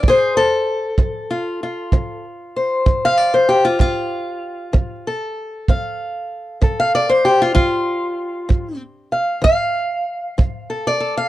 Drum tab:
BD |o--o--o--o--|o--o--o--o--|o--o--o--o--|